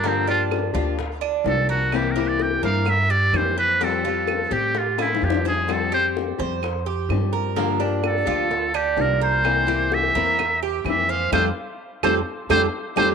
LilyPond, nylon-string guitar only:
\new Staff \with { instrumentName = "Nylon-string guitar" } { \time 4/4 \key f \major \tempo 4 = 128 <d f bes d' g'>8 <f bes d' g'>4 <f bes d' g'>8 r4 <f bes d' g'>4 | <c e bes c' e'>8 <e bes c' e'>4 <e bes c' e'>8 r4 <e bes c' e'>4 | <f g c' g'>8 <g c' g'>4 <g c' g'>8 r4 <f g c' g'>4 | <f g c' g'>8 <g c' g'>4 <g c' g'>8 r4 <f g c' g'>4 |
<d f bes d' g'>8 <f bes d' g'>4 <f bes d' g'>8 r4 <f bes d' g'>4 | <c e bes c' e'>8 <e bes c' e'>4 <e bes c' e'>8 r4 <e bes c' e'>4 | <g a c'>8 r4 <g a c'>8 r8 <g a c'>8 r8 <g a c'>8 | }